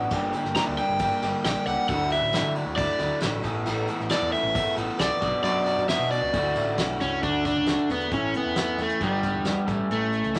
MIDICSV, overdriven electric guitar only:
0, 0, Header, 1, 2, 480
1, 0, Start_track
1, 0, Key_signature, 2, "major"
1, 0, Tempo, 445104
1, 119, Time_signature, 4, 2, 24, 8
1, 11207, End_track
2, 0, Start_track
2, 0, Title_t, "Overdriven electric guitar"
2, 0, Program_c, 0, 29
2, 603, Note_on_c, 0, 82, 104
2, 667, Note_off_c, 0, 82, 0
2, 844, Note_on_c, 0, 79, 104
2, 1516, Note_off_c, 0, 79, 0
2, 1565, Note_on_c, 0, 79, 84
2, 1793, Note_off_c, 0, 79, 0
2, 1797, Note_on_c, 0, 78, 98
2, 2021, Note_off_c, 0, 78, 0
2, 2034, Note_on_c, 0, 78, 98
2, 2281, Note_off_c, 0, 78, 0
2, 2291, Note_on_c, 0, 76, 83
2, 2728, Note_off_c, 0, 76, 0
2, 2977, Note_on_c, 0, 74, 107
2, 3430, Note_off_c, 0, 74, 0
2, 4434, Note_on_c, 0, 74, 83
2, 4660, Note_off_c, 0, 74, 0
2, 4665, Note_on_c, 0, 76, 110
2, 5113, Note_off_c, 0, 76, 0
2, 5400, Note_on_c, 0, 74, 89
2, 5841, Note_off_c, 0, 74, 0
2, 5861, Note_on_c, 0, 74, 106
2, 6344, Note_off_c, 0, 74, 0
2, 6349, Note_on_c, 0, 76, 101
2, 6571, Note_off_c, 0, 76, 0
2, 6590, Note_on_c, 0, 74, 97
2, 7506, Note_off_c, 0, 74, 0
2, 7563, Note_on_c, 0, 61, 108
2, 7794, Note_off_c, 0, 61, 0
2, 7798, Note_on_c, 0, 62, 109
2, 8028, Note_off_c, 0, 62, 0
2, 8041, Note_on_c, 0, 62, 96
2, 8529, Note_off_c, 0, 62, 0
2, 8536, Note_on_c, 0, 59, 78
2, 8768, Note_off_c, 0, 59, 0
2, 8772, Note_on_c, 0, 61, 92
2, 8985, Note_off_c, 0, 61, 0
2, 9025, Note_on_c, 0, 59, 87
2, 9502, Note_off_c, 0, 59, 0
2, 9505, Note_on_c, 0, 57, 86
2, 9713, Note_off_c, 0, 57, 0
2, 9740, Note_on_c, 0, 55, 91
2, 10645, Note_off_c, 0, 55, 0
2, 10700, Note_on_c, 0, 57, 77
2, 11207, Note_off_c, 0, 57, 0
2, 11207, End_track
0, 0, End_of_file